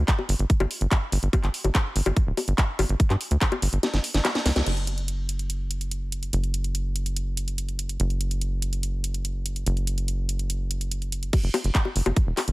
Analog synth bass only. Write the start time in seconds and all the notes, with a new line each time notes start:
0.29 G1
0.39 G1
0.60 G1
0.81 G1
1.12 G1
1.23 G1
1.44 G1
1.64 G1
1.96 G1
2.06 G1
2.27 D1
2.48 G1
2.79 G1
2.89 G1
3.10 G2
3.31 D2
3.62 G1
3.73 G1
3.94 G1
4.14 G1
4.46 C#2
4.56 C#2
4.67 F#1
6.33 F#1
8.00 F#1
9.67 F#1
11.44 F#1
11.64 F#1
11.96 F#1
12.06 F#1
12.27 E1
12.48 F#1